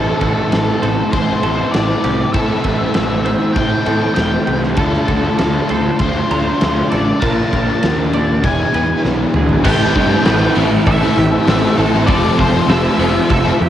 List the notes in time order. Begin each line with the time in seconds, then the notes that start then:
Already playing: A1 A2 E3 A3 C4 E4 A4
0.21 A1 A4, kick, ride
0.52 A1 A4, snare, ride
0.82 A1 C5, ride
1.11 A1 A2 E3 A3 C4 E4 A4 C5, kick, ride
1.43 A1 A2 E3 A3 C4 E4 A4, ride
1.71 A1 A2 E3 A3 D5, snare, ride
1.76 C4 E4
2.04 C2 G4, ride
2.33 A2 E3 A3 C4 E4 A4 E5, kick, ride
2.37 A3 C4 E4
2.64 A1 A4, kick, ride
2.94 A1, snare, ride
3.25 C5, ride
3.53 A2 E3 A3 C4 E4 G5, kick, ride
3.57 A4
3.85 A2 E3 A3 C4 E4 A4, ride
4.15 E1 A2 E3 A3 G5, snare, ride
4.19 C4 E4
4.47 C2 G4, ride
4.63 snare
4.75 D2 D3 A3 D4 A4 D5 D6, kick, ride
4.79 A3 D4 F4 F5
4.94 snare
5.08 D2 A4, kick, ride
5.38 D2 A4, snare, ride
5.69 D2 C5, ride
5.99 D2 D3 A3 D4 C5, kick, ride
6.03 F4
6.29 D2 D3 A3 D4 F4 A#5, ride
6.60 D2 D3 A3 D4 F4, snare, ride
6.90 A1 A4 D5, ride
7.20 A#1 A#2 D3 F3 A#3 D4 F4 A#4 A5, kick, ride
7.24 D4 F4 A#4 D5
7.53 A#1 A#4, kick, ride
7.83 D#2, snare, ride
8.13 D5, ride
8.42 E1 E2 B2 E3 G#3 B3 D4 E4 B4 E5 G#5, kick, ride
8.46 G#4
8.74 E2 B4, ride
9.05 B1, snare
9.34 D2 G#4, mid tom
9.49 floor tom
9.64 A1 A2 E3 A3 C4 E4 G4 A4 G5 A5 E6, kick, crash
9.95 G2 E3 A3 C4, kick, open hi-hat
9.99 E4
10.10 A3 C4 E4 A4, muted overdriven electric guitar stroke
10.24 A1 A2 E3 A3 C4 E4 A4 B4, snare, open hi-hat
10.29 C4 E4
10.41 A3 C4 E4
10.54 A1 A2 E3 A3 C4 E4 A4, open hi-hat
10.71 A3 C4 E4, muted overdriven electric guitar stroke
10.86 A1 A4 E5, kick, open hi-hat
11.01 A3 C4 E4 A4
11.16 A1 E3 A3 C4 E4 G4, muted overdriven electric guitar stroke, open hi-hat
11.31 A3 C4 E4 A4
11.46 A1 A2 E3 A3 C4 E4 A4, snare, open hi-hat
11.62 A3 C4 E4
11.76 A1 E3 A3 C4 E4 A4, open hi-hat
11.91 A3 C4 E4 A4, snare
12.06 F1 F2 C3 F3 A3 C4 F4 A4 D5, kick, open hi-hat
12.36 F1 F3 A3 C4 F4 C5, kick, open hi-hat
12.53 C4 F4 A4, muted overdriven electric guitar stroke
12.67 F1 F2 C3 F3 A3 C4 F4 C5 E5, snare, open hi-hat
12.71 A4
12.83 F3 A3 C4 F4
12.99 F1 F2 C3 F3 A3 C4 F4 A4, open hi-hat
13.13 F3 A3 C4 F4, muted overdriven electric guitar stroke
13.30 F1 A4 E5, kick, open hi-hat
13.45 C4 F4 A4
13.58 F2 F3 A3 C4 F4 G4, muted overdriven electric guitar stroke, open hi-hat